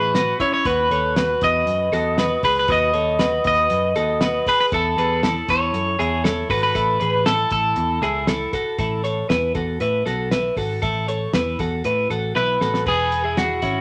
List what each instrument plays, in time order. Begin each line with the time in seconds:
Already playing: picked electric bass A1, clean electric guitar E4 G#4 B4, glockenspiel B5
0.15 clean electric guitar B3 F#4, snare, closed hi-hat
0.40 clean electric guitar C#4 E4 C#5, glockenspiel C#6, kick, closed hi-hat
0.53 clean electric guitar C#5, glockenspiel C#6
0.65 picked electric bass D#2, clean electric guitar F#4 B4, glockenspiel B5, kick, closed hi-hat
0.91 picked electric bass D#2, clean electric guitar A4 C#5, closed hi-hat
1.16 clean electric guitar F#4 B4, snare, closed hi-hat
1.41 picked electric bass E2, clean electric guitar D#5, glockenspiel D#6, kick, closed hi-hat
1.66 picked electric bass F#2, closed hi-hat
1.92 picked electric bass E2, clean electric guitar F#4 A4, snare, closed hi-hat
2.18 clean electric guitar F#4 B4, snare, closed hi-hat
2.43 picked electric bass C#2, clean electric guitar G#4 B4, glockenspiel B5, kick, open hi-hat
2.59 clean electric guitar B4
2.68 picked electric bass D#2, clean electric guitar F#4 B4 D#5, glockenspiel D#6, kick, closed hi-hat
2.93 picked electric bass D#2, clean electric guitar A4 C#5, closed hi-hat
3.19 clean electric guitar F#4 B4, snare, closed hi-hat
3.44 picked electric bass D#2, clean electric guitar D#5, glockenspiel D#6, kick, closed hi-hat
3.70 picked electric bass F#2, closed hi-hat
3.96 picked electric bass D#2, clean electric guitar F#4 A4, closed hi-hat
4.21 clean electric guitar F#4 B4, snare, closed hi-hat
4.46 clean electric guitar G#4 B4, glockenspiel B5, kick, open hi-hat
4.60 clean electric guitar B4, glockenspiel B5
4.72 picked electric bass E2, clean electric guitar E4 A4, glockenspiel A5, kick, closed hi-hat
4.97 picked electric bass E2, clean electric guitar G#4 B4, closed hi-hat
5.23 clean electric guitar E4 A4, snare, closed hi-hat
5.48 picked electric bass E2, clean electric guitar C#5, glockenspiel C#6, kick, closed hi-hat
5.74 picked electric bass F#2, closed hi-hat
5.99 picked electric bass E2, clean electric guitar E4 G#4, closed hi-hat
6.24 clean electric guitar E4 A4, snare, closed hi-hat
6.50 picked electric bass G#1, clean electric guitar F#4 A4 B4, glockenspiel B5, kick, open hi-hat
6.63 clean electric guitar B4, glockenspiel B5
6.75 picked electric bass A1, clean electric guitar E4 A4, kick, closed hi-hat
7.00 picked electric bass A1, clean electric guitar G#4 B4, closed hi-hat
7.26 clean electric guitar E4 A4, glockenspiel A5, snare, closed hi-hat
7.50 picked electric bass A1, clean electric guitar A4, glockenspiel A5, kick, closed hi-hat
7.76 picked electric bass E2, closed hi-hat
8.01 picked electric bass C#2, clean electric guitar E4 G#4, snare, closed hi-hat
8.27 clean electric guitar E4 A4, snare, closed hi-hat
8.53 clean electric guitar F#4 A4, kick, closed hi-hat
8.79 picked electric bass A1, clean electric guitar E4 A4, kick, closed hi-hat
9.04 clean electric guitar A4 C#5, closed hi-hat
9.29 picked electric bass E2, clean electric guitar E4 B4, snare, closed hi-hat
9.55 picked electric bass E2, clean electric guitar F#4 A4, kick, closed hi-hat
9.80 picked electric bass A2, clean electric guitar E4 B4, closed hi-hat
10.06 picked electric bass B1, clean electric guitar F#4 A4, snare, closed hi-hat
10.31 clean electric guitar E4 B4, snare, closed hi-hat
10.57 picked electric bass G#1, clean electric guitar F#4 A4, kick, open hi-hat
10.82 picked electric bass A1, clean electric guitar E4 A4, kick, closed hi-hat
11.08 clean electric guitar A4 C#5, closed hi-hat
11.33 picked electric bass E2, clean electric guitar E4 B4, snare, closed hi-hat
11.59 picked electric bass E2, clean electric guitar F#4 A4, kick, closed hi-hat
11.84 picked electric bass A2, clean electric guitar E4 B4, closed hi-hat
12.10 picked electric bass A1, clean electric guitar F#4 A4, closed hi-hat
12.35 picked electric bass B1, clean electric guitar E4 B4, snare
12.61 picked electric bass A1, clean electric guitar F#4 A4, snare
12.74 snare
12.86 picked electric bass E1, clean electric guitar G#4 B4, kick, crash
13.12 closed hi-hat
13.24 clean electric guitar E4 G#4
13.37 clean electric guitar F#4, snare, closed hi-hat
13.62 picked electric bass G#1, clean electric guitar C#4 E4, kick, closed hi-hat